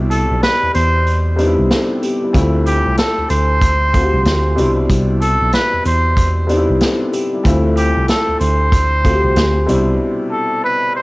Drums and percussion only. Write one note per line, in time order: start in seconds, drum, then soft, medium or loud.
0.11 sleigh bells medium
0.43 snare loud
0.43 sleigh bells medium
0.75 sleigh bells medium
1.07 sleigh bells medium
1.39 sleigh bells medium
1.71 snare loud
1.71 sleigh bells soft
2.03 sleigh bells medium
2.34 kick loud
2.34 closed hi-hat medium
2.34 sleigh bells soft
2.66 shaker medium
2.66 sleigh bells medium
2.97 snare loud
2.97 closed hi-hat medium
2.97 sleigh bells medium
3.30 closed hi-hat medium
3.30 shaker medium
3.30 sleigh bells medium
3.61 kick loud
3.61 closed hi-hat loud
3.61 sleigh bells soft
3.94 kick loud
3.94 shaker medium
3.94 sleigh bells medium
4.25 snare loud
4.25 closed hi-hat medium
4.25 sleigh bells soft
4.58 shaker medium
4.58 sleigh bells medium
4.90 kick loud
4.90 closed hi-hat medium
4.90 sleigh bells soft
5.21 shaker medium
5.21 sleigh bells medium
5.52 snare loud
5.52 closed hi-hat medium
5.52 sleigh bells medium
5.85 shaker medium
5.85 sleigh bells medium
6.17 kick loud
6.17 closed hi-hat loud
6.17 sleigh bells soft
6.49 shaker medium
6.49 sleigh bells medium
6.81 snare loud
6.81 closed hi-hat medium
6.81 sleigh bells soft
7.13 shaker medium
7.13 sleigh bells medium
7.45 kick loud
7.45 closed hi-hat medium
7.45 sleigh bells soft
7.77 shaker medium
7.77 sleigh bells medium
8.08 snare loud
8.08 closed hi-hat medium
8.08 sleigh bells medium
8.41 shaker medium
8.41 sleigh bells medium
8.72 kick loud
8.72 closed hi-hat loud
8.72 sleigh bells soft
9.04 kick loud
9.04 shaker medium
9.04 sleigh bells medium
9.36 snare loud
9.36 closed hi-hat medium
9.36 sleigh bells soft
9.69 shaker medium
9.69 sleigh bells medium